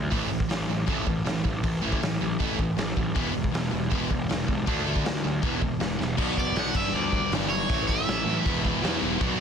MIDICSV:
0, 0, Header, 1, 6, 480
1, 0, Start_track
1, 0, Tempo, 379027
1, 143, Time_signature, 4, 2, 24, 8
1, 11905, End_track
2, 0, Start_track
2, 0, Title_t, "Overdriven electric guitar"
2, 0, Program_c, 0, 29
2, 8095, Note_on_c, 0, 74, 93
2, 8313, Note_on_c, 0, 78, 112
2, 8330, Note_off_c, 0, 74, 0
2, 8563, Note_off_c, 0, 78, 0
2, 8563, Note_on_c, 0, 76, 100
2, 8782, Note_off_c, 0, 76, 0
2, 8782, Note_on_c, 0, 74, 98
2, 9266, Note_off_c, 0, 74, 0
2, 9494, Note_on_c, 0, 73, 90
2, 9970, Note_off_c, 0, 73, 0
2, 9975, Note_on_c, 0, 76, 95
2, 10887, Note_off_c, 0, 76, 0
2, 11905, End_track
3, 0, Start_track
3, 0, Title_t, "Overdriven electric guitar"
3, 0, Program_c, 1, 29
3, 137, Note_on_c, 1, 45, 83
3, 145, Note_on_c, 1, 52, 95
3, 153, Note_on_c, 1, 57, 106
3, 366, Note_off_c, 1, 45, 0
3, 370, Note_off_c, 1, 52, 0
3, 374, Note_off_c, 1, 57, 0
3, 381, Note_on_c, 1, 45, 69
3, 383, Note_on_c, 1, 52, 80
3, 599, Note_off_c, 1, 45, 0
3, 600, Note_off_c, 1, 52, 0
3, 618, Note_on_c, 1, 45, 68
3, 625, Note_on_c, 1, 52, 76
3, 837, Note_off_c, 1, 45, 0
3, 841, Note_off_c, 1, 52, 0
3, 858, Note_on_c, 1, 45, 79
3, 863, Note_on_c, 1, 52, 81
3, 1078, Note_off_c, 1, 45, 0
3, 1080, Note_off_c, 1, 52, 0
3, 1094, Note_on_c, 1, 45, 85
3, 1100, Note_on_c, 1, 52, 94
3, 1108, Note_on_c, 1, 57, 90
3, 1307, Note_off_c, 1, 45, 0
3, 1314, Note_off_c, 1, 52, 0
3, 1322, Note_on_c, 1, 45, 74
3, 1329, Note_on_c, 1, 52, 84
3, 1333, Note_off_c, 1, 57, 0
3, 1550, Note_off_c, 1, 45, 0
3, 1554, Note_off_c, 1, 52, 0
3, 1578, Note_on_c, 1, 45, 80
3, 1585, Note_on_c, 1, 52, 78
3, 1798, Note_off_c, 1, 45, 0
3, 1802, Note_off_c, 1, 52, 0
3, 1820, Note_on_c, 1, 45, 73
3, 1822, Note_on_c, 1, 52, 71
3, 2040, Note_off_c, 1, 45, 0
3, 2041, Note_off_c, 1, 52, 0
3, 2070, Note_on_c, 1, 45, 76
3, 2077, Note_on_c, 1, 52, 94
3, 2285, Note_off_c, 1, 45, 0
3, 2288, Note_off_c, 1, 52, 0
3, 2299, Note_on_c, 1, 45, 93
3, 2313, Note_on_c, 1, 52, 98
3, 2323, Note_on_c, 1, 57, 109
3, 2530, Note_off_c, 1, 45, 0
3, 2536, Note_off_c, 1, 52, 0
3, 2541, Note_off_c, 1, 57, 0
3, 2564, Note_on_c, 1, 45, 69
3, 2574, Note_on_c, 1, 52, 79
3, 2772, Note_off_c, 1, 45, 0
3, 2777, Note_off_c, 1, 52, 0
3, 2797, Note_on_c, 1, 45, 70
3, 2801, Note_on_c, 1, 52, 83
3, 3009, Note_off_c, 1, 45, 0
3, 3011, Note_off_c, 1, 52, 0
3, 3025, Note_on_c, 1, 45, 92
3, 3038, Note_on_c, 1, 52, 97
3, 3042, Note_on_c, 1, 57, 97
3, 3248, Note_off_c, 1, 45, 0
3, 3248, Note_off_c, 1, 52, 0
3, 3261, Note_off_c, 1, 57, 0
3, 3263, Note_on_c, 1, 45, 69
3, 3263, Note_on_c, 1, 52, 72
3, 3482, Note_off_c, 1, 45, 0
3, 3483, Note_off_c, 1, 52, 0
3, 3503, Note_on_c, 1, 45, 75
3, 3505, Note_on_c, 1, 52, 84
3, 3723, Note_off_c, 1, 45, 0
3, 3724, Note_off_c, 1, 52, 0
3, 3754, Note_on_c, 1, 45, 64
3, 3762, Note_on_c, 1, 52, 79
3, 3968, Note_off_c, 1, 45, 0
3, 3970, Note_off_c, 1, 52, 0
3, 3985, Note_on_c, 1, 52, 93
3, 3992, Note_on_c, 1, 56, 99
3, 4000, Note_on_c, 1, 59, 112
3, 4201, Note_off_c, 1, 52, 0
3, 4201, Note_off_c, 1, 56, 0
3, 4216, Note_on_c, 1, 52, 72
3, 4216, Note_on_c, 1, 56, 80
3, 4221, Note_off_c, 1, 59, 0
3, 4440, Note_off_c, 1, 52, 0
3, 4440, Note_off_c, 1, 56, 0
3, 4453, Note_on_c, 1, 52, 70
3, 4463, Note_on_c, 1, 56, 77
3, 4678, Note_off_c, 1, 52, 0
3, 4684, Note_off_c, 1, 56, 0
3, 4698, Note_on_c, 1, 52, 83
3, 4705, Note_on_c, 1, 56, 81
3, 4921, Note_off_c, 1, 52, 0
3, 4925, Note_off_c, 1, 56, 0
3, 4953, Note_on_c, 1, 52, 85
3, 4967, Note_on_c, 1, 59, 89
3, 4968, Note_on_c, 1, 56, 97
3, 5178, Note_off_c, 1, 52, 0
3, 5185, Note_off_c, 1, 59, 0
3, 5186, Note_off_c, 1, 56, 0
3, 5196, Note_on_c, 1, 52, 71
3, 5205, Note_on_c, 1, 56, 77
3, 5410, Note_off_c, 1, 52, 0
3, 5415, Note_off_c, 1, 56, 0
3, 5436, Note_on_c, 1, 52, 72
3, 5440, Note_on_c, 1, 56, 92
3, 5644, Note_off_c, 1, 56, 0
3, 5651, Note_off_c, 1, 52, 0
3, 5659, Note_on_c, 1, 56, 77
3, 5663, Note_on_c, 1, 52, 72
3, 5882, Note_off_c, 1, 56, 0
3, 5884, Note_off_c, 1, 52, 0
3, 5906, Note_on_c, 1, 50, 95
3, 5920, Note_on_c, 1, 57, 97
3, 5925, Note_on_c, 1, 62, 103
3, 6116, Note_off_c, 1, 50, 0
3, 6127, Note_off_c, 1, 57, 0
3, 6132, Note_on_c, 1, 50, 93
3, 6142, Note_on_c, 1, 57, 96
3, 6145, Note_off_c, 1, 62, 0
3, 6160, Note_on_c, 1, 62, 93
3, 6368, Note_off_c, 1, 50, 0
3, 6374, Note_off_c, 1, 57, 0
3, 6382, Note_off_c, 1, 62, 0
3, 6401, Note_on_c, 1, 50, 69
3, 6409, Note_on_c, 1, 57, 71
3, 6613, Note_off_c, 1, 50, 0
3, 6617, Note_off_c, 1, 57, 0
3, 6632, Note_on_c, 1, 50, 76
3, 6632, Note_on_c, 1, 57, 78
3, 6849, Note_off_c, 1, 50, 0
3, 6849, Note_off_c, 1, 57, 0
3, 6865, Note_on_c, 1, 52, 92
3, 6874, Note_on_c, 1, 56, 93
3, 6888, Note_on_c, 1, 59, 87
3, 7095, Note_off_c, 1, 52, 0
3, 7099, Note_off_c, 1, 56, 0
3, 7106, Note_off_c, 1, 59, 0
3, 7120, Note_on_c, 1, 52, 71
3, 7127, Note_on_c, 1, 56, 80
3, 7333, Note_off_c, 1, 52, 0
3, 7336, Note_off_c, 1, 56, 0
3, 7347, Note_on_c, 1, 52, 74
3, 7349, Note_on_c, 1, 56, 87
3, 7566, Note_off_c, 1, 52, 0
3, 7567, Note_off_c, 1, 56, 0
3, 7584, Note_on_c, 1, 56, 65
3, 7587, Note_on_c, 1, 52, 58
3, 7805, Note_off_c, 1, 56, 0
3, 7806, Note_off_c, 1, 52, 0
3, 7816, Note_on_c, 1, 47, 93
3, 7827, Note_on_c, 1, 54, 96
3, 7834, Note_on_c, 1, 59, 103
3, 7838, Note_on_c, 1, 62, 104
3, 8273, Note_off_c, 1, 47, 0
3, 8277, Note_off_c, 1, 54, 0
3, 8288, Note_on_c, 1, 47, 74
3, 8292, Note_off_c, 1, 59, 0
3, 8292, Note_on_c, 1, 54, 74
3, 8300, Note_off_c, 1, 62, 0
3, 8307, Note_on_c, 1, 59, 88
3, 8315, Note_on_c, 1, 62, 90
3, 8517, Note_on_c, 1, 43, 99
3, 8523, Note_off_c, 1, 47, 0
3, 8527, Note_off_c, 1, 54, 0
3, 8528, Note_on_c, 1, 50, 95
3, 8532, Note_off_c, 1, 59, 0
3, 8539, Note_off_c, 1, 62, 0
3, 8540, Note_on_c, 1, 55, 109
3, 8548, Note_on_c, 1, 59, 97
3, 8555, Note_on_c, 1, 62, 100
3, 8752, Note_off_c, 1, 43, 0
3, 8763, Note_off_c, 1, 50, 0
3, 8767, Note_off_c, 1, 55, 0
3, 8767, Note_on_c, 1, 43, 89
3, 8769, Note_off_c, 1, 59, 0
3, 8778, Note_on_c, 1, 50, 95
3, 8779, Note_off_c, 1, 62, 0
3, 8782, Note_on_c, 1, 55, 96
3, 8784, Note_on_c, 1, 59, 111
3, 8794, Note_on_c, 1, 62, 96
3, 9232, Note_off_c, 1, 43, 0
3, 9239, Note_off_c, 1, 50, 0
3, 9247, Note_off_c, 1, 55, 0
3, 9247, Note_on_c, 1, 43, 82
3, 9254, Note_off_c, 1, 59, 0
3, 9254, Note_on_c, 1, 50, 86
3, 9259, Note_off_c, 1, 62, 0
3, 9262, Note_on_c, 1, 55, 95
3, 9269, Note_on_c, 1, 59, 99
3, 9274, Note_on_c, 1, 62, 103
3, 9487, Note_off_c, 1, 43, 0
3, 9500, Note_off_c, 1, 55, 0
3, 9502, Note_off_c, 1, 50, 0
3, 9502, Note_on_c, 1, 43, 78
3, 9508, Note_off_c, 1, 59, 0
3, 9515, Note_on_c, 1, 55, 95
3, 9517, Note_on_c, 1, 50, 82
3, 9522, Note_off_c, 1, 62, 0
3, 9523, Note_on_c, 1, 59, 87
3, 9537, Note_on_c, 1, 62, 92
3, 9731, Note_off_c, 1, 43, 0
3, 9737, Note_off_c, 1, 55, 0
3, 9738, Note_off_c, 1, 50, 0
3, 9738, Note_on_c, 1, 45, 96
3, 9741, Note_off_c, 1, 59, 0
3, 9745, Note_on_c, 1, 52, 89
3, 9748, Note_off_c, 1, 62, 0
3, 9757, Note_on_c, 1, 57, 98
3, 9758, Note_on_c, 1, 61, 97
3, 9769, Note_on_c, 1, 64, 117
3, 10215, Note_off_c, 1, 45, 0
3, 10222, Note_off_c, 1, 57, 0
3, 10223, Note_off_c, 1, 52, 0
3, 10230, Note_on_c, 1, 45, 73
3, 10237, Note_off_c, 1, 64, 0
3, 10237, Note_on_c, 1, 57, 85
3, 10238, Note_on_c, 1, 52, 75
3, 10240, Note_off_c, 1, 61, 0
3, 10252, Note_on_c, 1, 64, 94
3, 10255, Note_on_c, 1, 61, 82
3, 10427, Note_off_c, 1, 45, 0
3, 10437, Note_off_c, 1, 52, 0
3, 10442, Note_on_c, 1, 45, 77
3, 10452, Note_on_c, 1, 52, 85
3, 10455, Note_off_c, 1, 57, 0
3, 10464, Note_off_c, 1, 61, 0
3, 10465, Note_off_c, 1, 64, 0
3, 10470, Note_on_c, 1, 57, 87
3, 10479, Note_on_c, 1, 61, 85
3, 10480, Note_on_c, 1, 64, 89
3, 10679, Note_off_c, 1, 45, 0
3, 10684, Note_off_c, 1, 52, 0
3, 10693, Note_off_c, 1, 57, 0
3, 10697, Note_off_c, 1, 61, 0
3, 10698, Note_off_c, 1, 64, 0
3, 10706, Note_on_c, 1, 52, 97
3, 10716, Note_on_c, 1, 56, 87
3, 10718, Note_on_c, 1, 59, 92
3, 10730, Note_on_c, 1, 64, 120
3, 11154, Note_off_c, 1, 52, 0
3, 11166, Note_off_c, 1, 56, 0
3, 11169, Note_on_c, 1, 52, 87
3, 11175, Note_off_c, 1, 59, 0
3, 11179, Note_off_c, 1, 64, 0
3, 11181, Note_on_c, 1, 56, 86
3, 11190, Note_on_c, 1, 59, 93
3, 11194, Note_on_c, 1, 64, 88
3, 11402, Note_off_c, 1, 52, 0
3, 11416, Note_off_c, 1, 56, 0
3, 11417, Note_on_c, 1, 52, 83
3, 11424, Note_off_c, 1, 59, 0
3, 11425, Note_off_c, 1, 64, 0
3, 11432, Note_on_c, 1, 56, 77
3, 11440, Note_on_c, 1, 59, 88
3, 11440, Note_on_c, 1, 64, 88
3, 11644, Note_off_c, 1, 52, 0
3, 11651, Note_off_c, 1, 56, 0
3, 11655, Note_off_c, 1, 59, 0
3, 11655, Note_off_c, 1, 64, 0
3, 11658, Note_on_c, 1, 47, 108
3, 11662, Note_on_c, 1, 54, 103
3, 11670, Note_on_c, 1, 59, 121
3, 11677, Note_on_c, 1, 62, 106
3, 11905, Note_off_c, 1, 47, 0
3, 11905, Note_off_c, 1, 54, 0
3, 11905, Note_off_c, 1, 59, 0
3, 11905, Note_off_c, 1, 62, 0
3, 11905, End_track
4, 0, Start_track
4, 0, Title_t, "Distorted electric guitar"
4, 0, Program_c, 2, 30
4, 4002, Note_on_c, 2, 40, 76
4, 4007, Note_on_c, 2, 47, 99
4, 4217, Note_off_c, 2, 40, 0
4, 4221, Note_off_c, 2, 47, 0
4, 4232, Note_on_c, 2, 40, 72
4, 4236, Note_on_c, 2, 47, 83
4, 4448, Note_off_c, 2, 40, 0
4, 4450, Note_off_c, 2, 47, 0
4, 4480, Note_on_c, 2, 40, 75
4, 4489, Note_on_c, 2, 47, 93
4, 4692, Note_off_c, 2, 40, 0
4, 4696, Note_off_c, 2, 47, 0
4, 4715, Note_on_c, 2, 40, 69
4, 4716, Note_on_c, 2, 47, 77
4, 4922, Note_off_c, 2, 40, 0
4, 4930, Note_off_c, 2, 47, 0
4, 4937, Note_on_c, 2, 40, 87
4, 4947, Note_on_c, 2, 47, 90
4, 5171, Note_off_c, 2, 40, 0
4, 5175, Note_off_c, 2, 47, 0
4, 5211, Note_on_c, 2, 40, 65
4, 5216, Note_on_c, 2, 47, 76
4, 5418, Note_off_c, 2, 40, 0
4, 5421, Note_off_c, 2, 47, 0
4, 5439, Note_on_c, 2, 40, 76
4, 5445, Note_on_c, 2, 47, 82
4, 5652, Note_off_c, 2, 40, 0
4, 5655, Note_off_c, 2, 47, 0
4, 5676, Note_on_c, 2, 40, 79
4, 5687, Note_on_c, 2, 47, 81
4, 5891, Note_off_c, 2, 40, 0
4, 5896, Note_off_c, 2, 47, 0
4, 6883, Note_on_c, 2, 40, 75
4, 6888, Note_on_c, 2, 47, 77
4, 7083, Note_off_c, 2, 40, 0
4, 7092, Note_off_c, 2, 47, 0
4, 7099, Note_on_c, 2, 40, 72
4, 7107, Note_on_c, 2, 47, 82
4, 7322, Note_off_c, 2, 40, 0
4, 7326, Note_off_c, 2, 47, 0
4, 7348, Note_on_c, 2, 40, 74
4, 7354, Note_on_c, 2, 47, 82
4, 7567, Note_off_c, 2, 40, 0
4, 7569, Note_off_c, 2, 47, 0
4, 7587, Note_on_c, 2, 47, 89
4, 7593, Note_on_c, 2, 40, 68
4, 7806, Note_off_c, 2, 47, 0
4, 7809, Note_off_c, 2, 40, 0
4, 10695, Note_on_c, 2, 40, 77
4, 10708, Note_on_c, 2, 47, 98
4, 11162, Note_off_c, 2, 40, 0
4, 11163, Note_off_c, 2, 47, 0
4, 11177, Note_on_c, 2, 40, 78
4, 11178, Note_on_c, 2, 47, 85
4, 11398, Note_off_c, 2, 40, 0
4, 11408, Note_off_c, 2, 47, 0
4, 11413, Note_on_c, 2, 40, 99
4, 11423, Note_on_c, 2, 47, 87
4, 11638, Note_off_c, 2, 47, 0
4, 11642, Note_off_c, 2, 40, 0
4, 11905, End_track
5, 0, Start_track
5, 0, Title_t, "Picked electric bass"
5, 0, Program_c, 3, 34
5, 159, Note_on_c, 3, 33, 97
5, 338, Note_off_c, 3, 33, 0
5, 380, Note_on_c, 3, 33, 81
5, 567, Note_off_c, 3, 33, 0
5, 638, Note_on_c, 3, 33, 85
5, 818, Note_off_c, 3, 33, 0
5, 882, Note_on_c, 3, 33, 94
5, 1061, Note_off_c, 3, 33, 0
5, 1113, Note_on_c, 3, 33, 90
5, 1295, Note_off_c, 3, 33, 0
5, 1355, Note_on_c, 3, 33, 90
5, 1537, Note_off_c, 3, 33, 0
5, 1596, Note_on_c, 3, 33, 88
5, 1777, Note_off_c, 3, 33, 0
5, 1835, Note_on_c, 3, 33, 82
5, 2017, Note_off_c, 3, 33, 0
5, 2072, Note_on_c, 3, 33, 94
5, 2255, Note_off_c, 3, 33, 0
5, 2325, Note_on_c, 3, 33, 83
5, 2504, Note_off_c, 3, 33, 0
5, 2567, Note_on_c, 3, 33, 82
5, 2745, Note_off_c, 3, 33, 0
5, 2802, Note_on_c, 3, 33, 96
5, 2982, Note_off_c, 3, 33, 0
5, 3042, Note_on_c, 3, 33, 94
5, 3408, Note_off_c, 3, 33, 0
5, 3518, Note_on_c, 3, 33, 88
5, 3700, Note_off_c, 3, 33, 0
5, 3754, Note_on_c, 3, 33, 92
5, 3938, Note_off_c, 3, 33, 0
5, 4002, Note_on_c, 3, 28, 96
5, 4183, Note_off_c, 3, 28, 0
5, 4229, Note_on_c, 3, 28, 82
5, 4415, Note_off_c, 3, 28, 0
5, 4463, Note_on_c, 3, 28, 92
5, 4651, Note_off_c, 3, 28, 0
5, 4723, Note_on_c, 3, 28, 91
5, 4904, Note_off_c, 3, 28, 0
5, 4958, Note_on_c, 3, 28, 91
5, 5141, Note_off_c, 3, 28, 0
5, 5204, Note_on_c, 3, 28, 87
5, 5385, Note_off_c, 3, 28, 0
5, 5464, Note_on_c, 3, 28, 90
5, 5637, Note_off_c, 3, 28, 0
5, 5684, Note_on_c, 3, 28, 85
5, 5865, Note_off_c, 3, 28, 0
5, 5923, Note_on_c, 3, 38, 89
5, 6104, Note_off_c, 3, 38, 0
5, 6169, Note_on_c, 3, 38, 79
5, 6348, Note_off_c, 3, 38, 0
5, 6399, Note_on_c, 3, 38, 89
5, 6582, Note_off_c, 3, 38, 0
5, 6644, Note_on_c, 3, 38, 86
5, 6825, Note_off_c, 3, 38, 0
5, 6878, Note_on_c, 3, 28, 92
5, 7246, Note_off_c, 3, 28, 0
5, 7357, Note_on_c, 3, 28, 87
5, 7540, Note_off_c, 3, 28, 0
5, 7594, Note_on_c, 3, 28, 78
5, 7778, Note_off_c, 3, 28, 0
5, 7828, Note_on_c, 3, 35, 85
5, 8007, Note_off_c, 3, 35, 0
5, 8070, Note_on_c, 3, 30, 88
5, 8248, Note_off_c, 3, 30, 0
5, 8306, Note_on_c, 3, 35, 89
5, 8485, Note_off_c, 3, 35, 0
5, 8542, Note_on_c, 3, 31, 89
5, 8722, Note_off_c, 3, 31, 0
5, 8782, Note_on_c, 3, 38, 84
5, 9139, Note_off_c, 3, 38, 0
5, 9264, Note_on_c, 3, 31, 94
5, 9443, Note_off_c, 3, 31, 0
5, 9499, Note_on_c, 3, 31, 91
5, 9679, Note_off_c, 3, 31, 0
5, 9749, Note_on_c, 3, 33, 91
5, 10102, Note_off_c, 3, 33, 0
5, 10238, Note_on_c, 3, 33, 88
5, 10411, Note_off_c, 3, 33, 0
5, 10454, Note_on_c, 3, 33, 93
5, 10635, Note_off_c, 3, 33, 0
5, 10711, Note_on_c, 3, 28, 92
5, 11062, Note_off_c, 3, 28, 0
5, 11188, Note_on_c, 3, 40, 98
5, 11362, Note_off_c, 3, 40, 0
5, 11430, Note_on_c, 3, 28, 90
5, 11603, Note_off_c, 3, 28, 0
5, 11658, Note_on_c, 3, 35, 97
5, 11835, Note_off_c, 3, 35, 0
5, 11905, End_track
6, 0, Start_track
6, 0, Title_t, "Drums"
6, 151, Note_on_c, 9, 36, 115
6, 153, Note_on_c, 9, 46, 64
6, 278, Note_off_c, 9, 36, 0
6, 280, Note_off_c, 9, 46, 0
6, 509, Note_on_c, 9, 36, 85
6, 631, Note_on_c, 9, 46, 61
6, 636, Note_off_c, 9, 36, 0
6, 646, Note_on_c, 9, 38, 106
6, 757, Note_off_c, 9, 46, 0
6, 772, Note_off_c, 9, 38, 0
6, 1112, Note_on_c, 9, 36, 104
6, 1112, Note_on_c, 9, 46, 63
6, 1238, Note_off_c, 9, 36, 0
6, 1239, Note_off_c, 9, 46, 0
6, 1353, Note_on_c, 9, 36, 89
6, 1479, Note_off_c, 9, 36, 0
6, 1595, Note_on_c, 9, 46, 51
6, 1610, Note_on_c, 9, 38, 98
6, 1722, Note_off_c, 9, 46, 0
6, 1737, Note_off_c, 9, 38, 0
6, 1835, Note_on_c, 9, 36, 78
6, 1962, Note_off_c, 9, 36, 0
6, 2075, Note_on_c, 9, 36, 125
6, 2076, Note_on_c, 9, 46, 60
6, 2202, Note_off_c, 9, 36, 0
6, 2203, Note_off_c, 9, 46, 0
6, 2437, Note_on_c, 9, 36, 94
6, 2562, Note_on_c, 9, 46, 55
6, 2564, Note_off_c, 9, 36, 0
6, 2577, Note_on_c, 9, 38, 110
6, 2688, Note_off_c, 9, 46, 0
6, 2703, Note_off_c, 9, 38, 0
6, 3042, Note_on_c, 9, 36, 97
6, 3050, Note_on_c, 9, 46, 53
6, 3168, Note_off_c, 9, 36, 0
6, 3177, Note_off_c, 9, 46, 0
6, 3281, Note_on_c, 9, 36, 98
6, 3407, Note_off_c, 9, 36, 0
6, 3516, Note_on_c, 9, 46, 52
6, 3531, Note_on_c, 9, 38, 99
6, 3643, Note_off_c, 9, 46, 0
6, 3658, Note_off_c, 9, 38, 0
6, 3759, Note_on_c, 9, 36, 84
6, 3886, Note_off_c, 9, 36, 0
6, 4000, Note_on_c, 9, 36, 117
6, 4000, Note_on_c, 9, 46, 59
6, 4126, Note_off_c, 9, 36, 0
6, 4126, Note_off_c, 9, 46, 0
6, 4359, Note_on_c, 9, 36, 87
6, 4482, Note_on_c, 9, 46, 60
6, 4486, Note_off_c, 9, 36, 0
6, 4497, Note_on_c, 9, 38, 124
6, 4609, Note_off_c, 9, 46, 0
6, 4624, Note_off_c, 9, 38, 0
6, 4960, Note_on_c, 9, 36, 106
6, 4960, Note_on_c, 9, 46, 61
6, 5086, Note_off_c, 9, 36, 0
6, 5087, Note_off_c, 9, 46, 0
6, 5199, Note_on_c, 9, 36, 93
6, 5326, Note_off_c, 9, 36, 0
6, 5441, Note_on_c, 9, 46, 55
6, 5457, Note_on_c, 9, 38, 100
6, 5568, Note_off_c, 9, 46, 0
6, 5583, Note_off_c, 9, 38, 0
6, 5679, Note_on_c, 9, 36, 81
6, 5805, Note_off_c, 9, 36, 0
6, 5919, Note_on_c, 9, 36, 121
6, 5922, Note_on_c, 9, 46, 66
6, 6045, Note_off_c, 9, 36, 0
6, 6048, Note_off_c, 9, 46, 0
6, 6279, Note_on_c, 9, 36, 79
6, 6396, Note_on_c, 9, 46, 58
6, 6406, Note_off_c, 9, 36, 0
6, 6411, Note_on_c, 9, 38, 123
6, 6523, Note_off_c, 9, 46, 0
6, 6538, Note_off_c, 9, 38, 0
6, 6875, Note_on_c, 9, 46, 50
6, 6877, Note_on_c, 9, 36, 106
6, 7002, Note_off_c, 9, 46, 0
6, 7003, Note_off_c, 9, 36, 0
6, 7115, Note_on_c, 9, 36, 92
6, 7241, Note_off_c, 9, 36, 0
6, 7345, Note_on_c, 9, 46, 48
6, 7360, Note_on_c, 9, 38, 97
6, 7472, Note_off_c, 9, 46, 0
6, 7487, Note_off_c, 9, 38, 0
6, 7604, Note_on_c, 9, 38, 61
6, 7730, Note_off_c, 9, 38, 0
6, 7830, Note_on_c, 9, 49, 114
6, 7831, Note_on_c, 9, 36, 120
6, 7956, Note_off_c, 9, 49, 0
6, 7958, Note_off_c, 9, 36, 0
6, 8072, Note_on_c, 9, 36, 92
6, 8199, Note_off_c, 9, 36, 0
6, 8304, Note_on_c, 9, 46, 64
6, 8319, Note_on_c, 9, 38, 111
6, 8431, Note_off_c, 9, 46, 0
6, 8446, Note_off_c, 9, 38, 0
6, 8542, Note_on_c, 9, 57, 98
6, 8546, Note_on_c, 9, 36, 97
6, 8668, Note_off_c, 9, 57, 0
6, 8673, Note_off_c, 9, 36, 0
6, 9023, Note_on_c, 9, 36, 94
6, 9150, Note_off_c, 9, 36, 0
6, 9271, Note_on_c, 9, 46, 59
6, 9286, Note_on_c, 9, 38, 102
6, 9397, Note_off_c, 9, 46, 0
6, 9412, Note_off_c, 9, 38, 0
6, 9746, Note_on_c, 9, 46, 68
6, 9748, Note_on_c, 9, 36, 113
6, 9873, Note_off_c, 9, 46, 0
6, 9875, Note_off_c, 9, 36, 0
6, 9989, Note_on_c, 9, 36, 83
6, 10116, Note_off_c, 9, 36, 0
6, 10229, Note_on_c, 9, 46, 60
6, 10244, Note_on_c, 9, 38, 115
6, 10355, Note_off_c, 9, 46, 0
6, 10370, Note_off_c, 9, 38, 0
6, 10712, Note_on_c, 9, 36, 107
6, 10725, Note_on_c, 9, 46, 56
6, 10839, Note_off_c, 9, 36, 0
6, 10852, Note_off_c, 9, 46, 0
6, 10952, Note_on_c, 9, 36, 88
6, 11079, Note_off_c, 9, 36, 0
6, 11190, Note_on_c, 9, 46, 57
6, 11205, Note_on_c, 9, 38, 106
6, 11317, Note_off_c, 9, 46, 0
6, 11332, Note_off_c, 9, 38, 0
6, 11661, Note_on_c, 9, 46, 62
6, 11664, Note_on_c, 9, 36, 125
6, 11788, Note_off_c, 9, 46, 0
6, 11791, Note_off_c, 9, 36, 0
6, 11905, End_track
0, 0, End_of_file